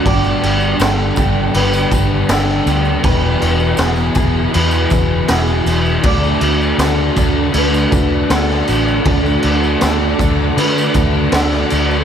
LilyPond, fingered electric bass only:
\new Staff \with { instrumentName = "Fingered electric bass" } { \clef bass \time 4/4 \key d \major \tempo 4 = 80 g,,8 g,,8 g,,8 g,,8 g,,8 g,,8 g,,8 d,8 | e,,8 e,,8 e,,8 e,,8 e,8 e,,8 e,,8 e,,8 | d,8 d,8 d,8 d,8 d,8 d,8 d,8 a,,8 | d,8 d,8 d,8 d,8 d8 d,8 d,8 d,8 | }